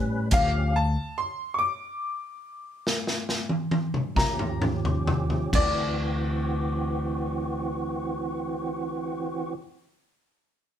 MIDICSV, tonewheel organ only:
0, 0, Header, 1, 2, 480
1, 0, Start_track
1, 0, Tempo, 839161
1, 187, Time_signature, 12, 3, 24, 8
1, 1631, Tempo, 881057
1, 2591, Tempo, 923077
1, 5807, End_track
2, 0, Start_track
2, 0, Title_t, "Tonewheel organ"
2, 0, Program_c, 0, 16
2, 0, Note_on_c, 0, 55, 61
2, 0, Note_on_c, 0, 61, 76
2, 0, Note_on_c, 0, 71, 67
2, 164, Note_off_c, 0, 55, 0
2, 166, Note_off_c, 0, 61, 0
2, 166, Note_off_c, 0, 71, 0
2, 182, Note_on_c, 0, 53, 68
2, 184, Note_on_c, 0, 67, 62
2, 185, Note_on_c, 0, 61, 68
2, 421, Note_off_c, 0, 53, 0
2, 422, Note_off_c, 0, 61, 0
2, 422, Note_off_c, 0, 67, 0
2, 2339, Note_on_c, 0, 53, 74
2, 2345, Note_on_c, 0, 61, 69
2, 2346, Note_on_c, 0, 67, 72
2, 3054, Note_off_c, 0, 53, 0
2, 3057, Note_off_c, 0, 61, 0
2, 3058, Note_off_c, 0, 67, 0
2, 3065, Note_on_c, 0, 60, 65
2, 3065, Note_on_c, 0, 66, 66
2, 3069, Note_on_c, 0, 52, 59
2, 5150, Note_off_c, 0, 60, 0
2, 5150, Note_off_c, 0, 66, 0
2, 5155, Note_off_c, 0, 52, 0
2, 5807, End_track
0, 0, End_of_file